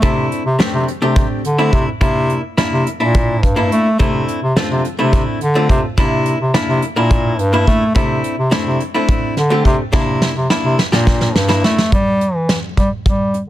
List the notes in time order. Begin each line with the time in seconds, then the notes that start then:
0.02 C3 A3 C4 D4 E4, kick, closed hi-hat
0.32 closed hi-hat
0.46 C3
0.59 A3 C4 D4 G4, snare, closed hi-hat
0.74 C3
0.88 closed hi-hat
1.02 C3 A3 C4 D4 G4
1.16 kick, closed hi-hat
1.44 D3, closed hi-hat
1.58 A3 C4 D4 E4
1.73 C3, kick, closed hi-hat
2.01 C3 A#3 D4 E4, kick, closed hi-hat
2.30 closed hi-hat
2.57 A#3 D4 E4, snare, closed hi-hat
2.73 C3
2.87 closed hi-hat
3.00 A#2 A#3 D4 E4
3.14 kick, closed hi-hat
3.43 G2, kick, closed hi-hat
3.56 A#3 D4 E4
3.72 A3, closed hi-hat
3.99 C3 A3 C4 D4 E4, kick, closed hi-hat
4.28 closed hi-hat
4.43 C3
4.56 A3 C4 D4 F4, snare, closed hi-hat
4.71 C3
4.85 closed hi-hat
4.99 C3 A3 C4 D4 E4
5.13 kick, closed hi-hat
5.41 D3, closed hi-hat
5.55 A3 C4 D4 F4
5.69 C3, kick, closed hi-hat
5.97 C3 A#3 D4 E4, kick, closed hi-hat
6.26 closed hi-hat
6.41 C3
6.54 A#3 D4 E4, snare, closed hi-hat
6.69 C3
6.82 closed hi-hat
6.96 A#2 A#3 D4 E4
7.11 kick, closed hi-hat
7.39 G2, closed hi-hat
7.53 A#3 D4 E4
7.67 A3, kick, closed hi-hat
7.95 C3 A3 C4 D4 E4, kick, closed hi-hat
8.24 closed hi-hat
8.38 C3
8.51 A3 C4 D4 E4, snare, closed hi-hat
8.66 C3
8.80 closed hi-hat
8.94 A3 C4 D4 E4
9.09 kick, closed hi-hat
9.37 D3, snare, closed hi-hat
9.50 A3 C4 D4 G4
9.65 C3, kick, closed hi-hat
9.93 C3 A#3 D4 E4, kick, snare
10.22 snare
10.36 C3
10.50 A#3 D4 E4, snare
10.65 C3
10.79 snare
10.92 A#2 A#3 D4 G4, snare
11.07 kick, snare
11.21 snare
11.36 G2, snare
11.48 A#3 D4 E4, snare
11.64 A3, snare
11.78 snare
11.92 G3, kick, closed hi-hat
12.21 closed hi-hat
12.35 E3
12.49 snare, closed hi-hat
12.77 G3, kick, closed hi-hat
13.06 G3, kick, closed hi-hat
13.34 closed hi-hat